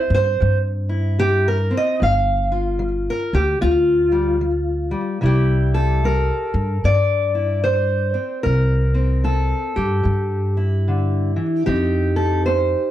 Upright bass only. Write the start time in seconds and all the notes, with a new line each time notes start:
0.10 G2
0.42 G2
2.02 G1
3.33 D2
3.62 D2
5.23 C2
6.54 G2
6.84 G2
8.46 C2
9.77 G2
10.05 G2
11.67 F2